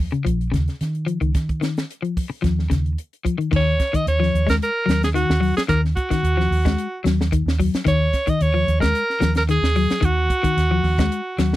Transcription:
Already playing: D#2
0.12 C#3, closed hi-hat
0.25 A#1 F3, kick, closed hi-hat
0.41 closed hi-hat
0.52 D#2 C#3, kick, snare, closed hi-hat
0.68 snare, closed hi-hat
0.81 D#3, snare, closed hi-hat
0.95 closed hi-hat
1.06 F3, closed hi-hat
1.21 C#2 D#3, closed hi-hat
1.35 D#3, kick, snare, closed hi-hat
1.49 kick, closed hi-hat
1.61 D#3, snare, closed hi-hat
1.77 snare, closed hi-hat
1.91 closed hi-hat
2.02 F3, closed hi-hat
2.17 kick, open hi-hat
2.30 muted clean electric guitar stroke
2.42 D#2 F3, kick, snare, closed hi-hat
2.59 snare
2.70 D#2 C#3, kick, snare, closed hi-hat
2.86 closed hi-hat
2.98 closed hi-hat
3.13 closed hi-hat
3.25 F3, kick, closed hi-hat
3.38 D#3, closed hi-hat
3.52 D#2 D#3, kick, crash
3.56 C#5
3.80 kick, snare, closed hi-hat
3.93 D#3 D#5, kick, closed hi-hat
4.07 D#2 C#5, closed hi-hat
4.20 F3, snare
4.34 D#2, closed hi-hat
4.47 G#3 A#4, kick, snare, closed hi-hat
4.62 A#4, closed hi-hat
4.86 D#2 F#3, snare, closed hi-hat
5.03 G#4, snare, closed hi-hat
5.14 D#3 F#4, snare, closed hi-hat
5.29 D#2, snare
5.41 F#3, open hi-hat
5.57 G#4, snare, closed hi-hat
5.68 D#2 D#3 A#4, kick, snare, closed hi-hat
5.85 snare
5.96 F#4, kick, closed hi-hat
6.10 D#3, kick, snare, closed hi-hat
6.23 D#2, closed hi-hat
6.37 F3, snare
6.51 D#2, open hi-hat
6.65 G#3, kick, snare, closed hi-hat
6.78 closed hi-hat
7.04 D#2 F#3, snare, closed hi-hat
7.21 snare
7.32 D#3, kick, closed hi-hat
7.46 D#2, snare
7.60 F#3, kick, open hi-hat
7.74 snare, closed hi-hat
7.85 D#2 D#3 C#5, kick, closed hi-hat
8.13 kick, snare, closed hi-hat
8.27 D#3 D#5, kick, closed hi-hat
8.41 D#2 C#5, closed hi-hat
8.54 F3
8.68 D#2, closed hi-hat
8.80 G#3 A#4, kick, snare, closed hi-hat
8.95 closed hi-hat
9.10 snare
9.20 D#2 F3, snare, closed hi-hat
9.35 A#4, snare, closed hi-hat
9.49 D#3 G#4, snare, closed hi-hat
9.62 D#2, snare
9.76 F#3, open hi-hat
9.90 snare, closed hi-hat
10.01 D#2 D#3 F#4, kick, closed hi-hat
10.30 kick, closed hi-hat
10.43 D#3, kick, closed hi-hat
10.57 D#2, snare, closed hi-hat
10.71 F3
10.84 D#2, open hi-hat
10.98 G#3, kick, snare, closed hi-hat
11.12 closed hi-hat
11.38 D#2 F#3, snare, closed hi-hat
11.53 snare

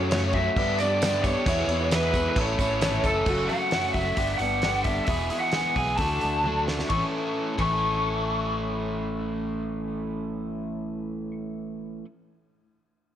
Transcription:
Already playing: F#2 C#3 F#3 A3 C#4 F#4 C#5
0.00 C#4 F#4 A4 C#5
0.11 F#2 C#3 F#3 A3 C#4 F#4, snare, tambourine, crash
0.33 A3 C#4 F#4 E5, kick, crash
0.37 F#3
0.56 G2 D3 G3 B3 D4 G4 B4 D5, kick, crash
0.60 D4 G4
0.78 B3 D4 G4 D5, tambourine, crash
0.83 G3
1.01 G2 D3 G3 B3 D4 G4, snare, tambourine, crash
1.12 D4 G4 B4 E5
1.23 B3 D4 G4 C#5, kick, tambourine, crash
1.28 G3
1.46 E2 B2 E3 G#3 B3 E4 G#4 B4 E5, kick, tambourine, crash
1.67 E2 B3 E4 G#4, tambourine, crash
1.80 E4 G#4 B4 E5
1.90 E3 G#3 B3 E4 G#4 B4, snare, tambourine, crash
2.13 E3 G#3 B3 E4 G#4, kick, tambourine, crash
2.30 B4
2.36 A1 A2 E3 A3 C#4 E4 A4 C#5 E5, kick, crash
2.41 C#5
2.59 A1 A3 C#4 E4 A4, kick, tambourine, crash
2.81 G#1 A2 E3 A3 C#4 E4 A4, snare, tambourine, crash
2.92 E4 A4 C#5 E5
3.04 F#1 A3 C#4 E4 A4, kick, tambourine, crash
3.26 F#1 F#2 C#3 F#3 A3 C#4 F#4, kick, crash
3.48 A3 C#4 F#4 F#5, open hi-hat
3.52 F#3
3.71 F#2 C#3 F#3 A3 C#4 F#4, snare, open hi-hat
3.93 F#1 F#3 A3 C#4 F#4 E5, kick, open hi-hat
4.16 G1 G2 D3 G3 B3 D4 G4, kick, open hi-hat
4.38 G1 B3 D4 G4 F#5, open hi-hat
4.42 G3
4.62 G2 D3 G3 B3 D4 G4, snare, open hi-hat
4.84 G3 B3 D4 G4 E5, kick, open hi-hat
5.06 E1 E2 B2 E3 B3 E4 G#4 E5, kick, open hi-hat
5.10 G#3
5.30 E3 G#3 B3 E4 G#4, open hi-hat
5.40 F#5
5.52 E3 G#3 B3 E4, snare, open hi-hat
5.56 G#4
5.76 B1 E3 G#3 B3 E4 G#4 G#5, kick, open hi-hat
5.97 D2 D3 A5, kick, open hi-hat
6.01 F#3 A3 D4 F#4 A4
6.21 D2 D4 A4, open hi-hat
6.25 A3
6.44 D3 F#3 A3 D4 F#4 A4, high tom
6.67 A3 D4 F#4 A4, snare
6.79 snare
6.85 A2
6.89 A1 A2 E3 C#4 C#6, kick, ride
6.93 A3 C#4 E4
7.00 E4 A4
7.54 A2
7.58 A1 A2 E3 C#4 C#6, kick, ride
7.62 A3 C#4 E4
7.69 E4 A4

